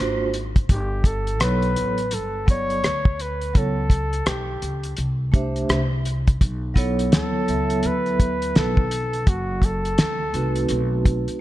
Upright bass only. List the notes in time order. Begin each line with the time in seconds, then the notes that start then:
Already playing: G#1
0.70 G1
1.41 B1
1.77 A1
2.13 G1
2.84 D2
3.55 C#2
4.27 B1
4.62 C#2
4.98 C2
5.69 C2
6.41 B1
7.48 C#2
7.84 D2
8.56 B1
9.27 F#1
10.34 C2
10.70 B1
11.28 muted upright bass stroke